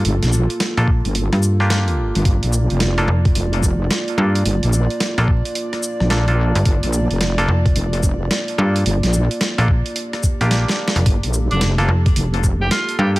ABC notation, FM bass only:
X:1
M:4/4
L:1/16
Q:"Swing 16ths" 1/4=109
K:Gm
V:1 name="FM bass" clef=bass
z4 z B,,,2 z2 G,,6 z | z6 F,,,2 z6 G,,2 | z4 z B,,,2 z8 G,,, | z6 F,,,2 z6 G,,2 |
z4 z B,,,2 z4 B,,,2 z2 F,,, | z6 F,,,2 z6 G,,2 |]